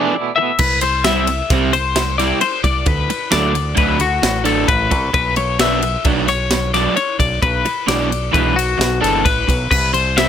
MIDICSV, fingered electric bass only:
0, 0, Header, 1, 2, 480
1, 0, Start_track
1, 0, Tempo, 455581
1, 625, Time_signature, 5, 2, 24, 8
1, 10838, End_track
2, 0, Start_track
2, 0, Title_t, "Fingered electric bass"
2, 0, Program_c, 0, 33
2, 624, Note_on_c, 0, 36, 100
2, 1481, Note_off_c, 0, 36, 0
2, 1582, Note_on_c, 0, 36, 93
2, 2441, Note_off_c, 0, 36, 0
2, 2780, Note_on_c, 0, 36, 92
2, 2996, Note_off_c, 0, 36, 0
2, 3018, Note_on_c, 0, 38, 98
2, 3235, Note_off_c, 0, 38, 0
2, 3510, Note_on_c, 0, 38, 101
2, 3936, Note_off_c, 0, 38, 0
2, 3978, Note_on_c, 0, 38, 95
2, 4409, Note_off_c, 0, 38, 0
2, 4458, Note_on_c, 0, 33, 99
2, 4889, Note_off_c, 0, 33, 0
2, 4937, Note_on_c, 0, 33, 98
2, 5174, Note_off_c, 0, 33, 0
2, 5174, Note_on_c, 0, 36, 110
2, 5393, Note_off_c, 0, 36, 0
2, 5414, Note_on_c, 0, 35, 108
2, 6276, Note_off_c, 0, 35, 0
2, 6370, Note_on_c, 0, 35, 102
2, 7234, Note_off_c, 0, 35, 0
2, 7583, Note_on_c, 0, 35, 99
2, 7798, Note_off_c, 0, 35, 0
2, 7824, Note_on_c, 0, 35, 102
2, 8039, Note_off_c, 0, 35, 0
2, 8304, Note_on_c, 0, 35, 99
2, 8734, Note_off_c, 0, 35, 0
2, 8793, Note_on_c, 0, 35, 97
2, 9219, Note_off_c, 0, 35, 0
2, 9264, Note_on_c, 0, 35, 97
2, 9480, Note_off_c, 0, 35, 0
2, 9511, Note_on_c, 0, 31, 81
2, 9725, Note_off_c, 0, 31, 0
2, 9748, Note_on_c, 0, 33, 88
2, 9964, Note_off_c, 0, 33, 0
2, 9992, Note_on_c, 0, 35, 97
2, 10206, Note_off_c, 0, 35, 0
2, 10233, Note_on_c, 0, 36, 107
2, 10838, Note_off_c, 0, 36, 0
2, 10838, End_track
0, 0, End_of_file